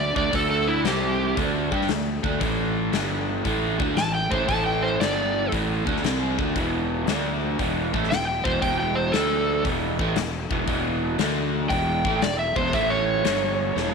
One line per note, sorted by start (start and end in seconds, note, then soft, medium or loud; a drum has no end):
0.00 0.13 D2 medium
0.00 0.16 D5 medium
0.15 0.32 D2 medium
0.15 0.31 D3 medium
0.15 0.31 A3 medium
0.15 0.32 D4 medium
0.15 0.33 D5 medium
0.15 kick loud
0.32 0.81 D2 medium
0.32 0.84 D3 medium
0.32 0.84 A3 medium
0.32 0.84 D4 loud
0.32 0.49 A4 medium
0.32 kick loud
0.32 open hi-hat soft
0.50 0.67 A4 medium
0.68 0.84 E4 medium
0.84 1.33 C2 medium
0.84 1.36 C3 medium
0.84 1.36 G3 medium
0.84 1.37 C4 medium
0.84 1.36 G4 medium
0.84 snare loud
0.84 open hi-hat soft
1.37 1.69 D2 medium
1.37 1.70 D3 medium
1.37 1.71 A3 medium
1.37 1.71 D4 medium
1.37 kick loud
1.37 open hi-hat soft
1.71 1.88 G2 medium
1.71 1.88 G3 medium
1.71 1.88 D4 medium
1.71 1.88 G4 loud
1.71 kick medium
1.81 snare soft
1.89 2.21 D2 medium
1.89 2.16 D3 medium
1.89 2.17 A3 medium
1.89 snare loud
1.89 open hi-hat soft
2.23 2.39 D2 medium
2.23 2.39 D3 medium
2.23 2.40 A3 medium
2.23 2.40 D4 medium
2.23 kick loud
2.40 2.89 A1 loud
2.40 2.92 A2 medium
2.40 2.92 E3 loud
2.40 2.92 A3 loud
2.40 kick loud
2.40 open hi-hat soft
2.92 3.41 G1 medium
2.92 3.44 G2 loud
2.92 3.44 D3 medium
2.92 3.44 G3 medium
2.92 snare loud
2.92 open hi-hat soft
3.44 3.77 A1 medium
3.44 3.78 A2 medium
3.44 3.78 E3 medium
3.44 3.78 A3 loud
3.44 kick medium
3.44 open hi-hat soft
3.79 3.95 D2 medium
3.79 3.95 D3 medium
3.79 3.95 A3 loud
3.79 3.96 D4 loud
3.79 kick loud
3.95 4.28 A1 medium
3.95 4.23 A2 medium
3.95 4.23 E3 medium
3.95 4.14 A5 medium
3.95 snare loud
3.95 open hi-hat soft
4.15 4.31 G5 medium
4.30 4.47 A1 medium
4.30 4.46 A2 medium
4.30 4.47 E3 medium
4.30 4.48 A3 medium
4.30 4.47 C5 medium
4.30 kick loud
4.48 4.96 A1 medium
4.48 4.99 A2 medium
4.48 4.99 E3 medium
4.48 5.00 A3 medium
4.48 4.65 A5 loud
4.48 kick loud
4.48 open hi-hat soft
4.66 4.82 G5 medium
4.82 4.99 C5 medium
4.99 5.48 G1 medium
4.99 5.51 G2 medium
4.99 5.51 D3 medium
4.99 5.51 G3 medium
4.99 5.50 D5 medium
4.99 snare loud
4.99 open hi-hat medium
5.51 5.84 A1 medium
5.51 5.85 A2 medium
5.51 5.85 E3 medium
5.51 5.85 A3 medium
5.51 kick medium
5.51 open hi-hat soft
5.86 6.02 D2 medium
5.86 6.02 D3 medium
5.86 6.03 A3 loud
5.86 6.03 D4 medium
5.86 kick medium
5.96 snare soft
6.03 6.36 C2 medium
6.03 6.37 C3 medium
6.03 6.37 G3 medium
6.03 6.37 C4 loud
6.03 snare loud
6.03 open hi-hat soft
6.38 6.54 D2 medium
6.38 6.54 D3 medium
6.38 6.55 A3 medium
6.38 6.55 D4 medium
6.38 kick loud
6.55 7.03 E1 medium
6.55 7.06 E2 medium
6.55 7.07 B2 medium
6.55 7.08 E3 loud
6.55 kick loud
6.55 open hi-hat soft
7.06 7.55 D2 medium
7.06 7.58 D3 medium
7.06 7.58 A3 medium
7.06 7.58 D4 medium
7.06 snare loud
7.06 open hi-hat medium
7.59 7.91 E1 medium
7.59 7.92 E2 medium
7.59 7.92 B2 medium
7.59 7.93 E3 medium
7.59 kick loud
7.59 open hi-hat soft
7.93 8.09 A1 medium
7.93 8.10 A2 medium
7.93 8.10 E3 medium
7.93 8.10 A3 medium
7.93 kick loud
8.03 snare soft
8.10 8.42 E1 medium
8.10 8.38 E2 medium
8.10 8.38 B2 medium
8.10 8.26 G5 medium
8.10 snare loud
8.10 open hi-hat medium
8.27 8.44 G5 medium
8.44 8.61 E1 medium
8.44 8.61 E2 medium
8.44 8.61 B2 medium
8.44 8.61 E3 medium
8.44 8.61 C5 medium
8.44 kick loud
8.62 9.10 E1 medium
8.62 9.13 E2 medium
8.62 9.12 B2 medium
8.62 9.12 E3 loud
8.62 8.78 G5 medium
8.62 kick loud
8.62 open hi-hat soft
8.80 8.96 G5 medium
8.95 9.12 C5 medium
9.12 9.61 D2 medium
9.12 9.64 D3 medium
9.12 9.64 A3 medium
9.12 9.64 D4 loud
9.12 9.63 A4 medium
9.12 snare loud
9.12 open hi-hat medium
9.64 9.97 E1 medium
9.64 9.98 E2 medium
9.64 9.98 B2 medium
9.64 9.98 E3 medium
9.64 kick loud
9.64 open hi-hat soft
9.99 10.15 A1 medium
9.99 10.16 A2 medium
9.99 10.16 E3 medium
9.99 10.16 A3 loud
9.99 kick loud
10.16 10.48 E1 medium
10.16 10.44 E2 medium
10.16 10.44 B2 medium
10.16 snare loud
10.16 open hi-hat medium
10.50 10.66 E1 medium
10.50 10.66 E2 medium
10.50 10.66 B2 medium
10.50 10.67 E3 medium
10.50 kick loud
10.67 11.15 E1 loud
10.67 11.18 E2 medium
10.67 11.18 B2 loud
10.67 11.19 E3 loud
10.67 kick loud
10.67 open hi-hat soft
11.19 11.67 D2 loud
11.19 11.69 D3 medium
11.19 11.70 A3 medium
11.19 11.70 D4 medium
11.19 snare loud
11.19 open hi-hat medium
11.69 12.02 E1 medium
11.69 12.03 E2 medium
11.69 12.03 B2 medium
11.69 12.04 E3 medium
11.69 12.20 G5 loud
11.69 kick loud
11.69 open hi-hat soft
12.05 12.21 A1 medium
12.05 12.21 A2 medium
12.05 12.22 E3 medium
12.05 12.22 A3 loud
12.05 kick loud
12.22 12.54 E1 medium
12.22 12.49 E2 medium
12.22 12.49 B2 medium
12.22 12.39 D5 medium
12.22 snare loud
12.22 open hi-hat soft
12.39 12.55 E5 medium
12.56 12.72 E1 medium
12.56 12.72 E2 medium
12.56 12.72 B2 medium
12.56 12.72 E3 medium
12.56 12.72 C5 medium
12.56 kick loud
12.72 13.21 A1 medium
12.72 13.24 A2 medium
12.72 13.25 E3 medium
12.72 13.24 A3 loud
12.72 12.90 E5 medium
12.72 kick loud
12.72 open hi-hat soft
12.90 13.90 C#5 medium
13.24 13.72 G1 medium
13.24 13.75 G2 medium
13.24 13.75 D3 medium
13.24 13.75 G3 medium
13.24 snare loud
13.24 open hi-hat medium
13.75 13.94 E1 medium
13.75 13.94 E2 medium
13.75 13.94 B2 medium
13.75 13.94 E3 medium
13.75 snare medium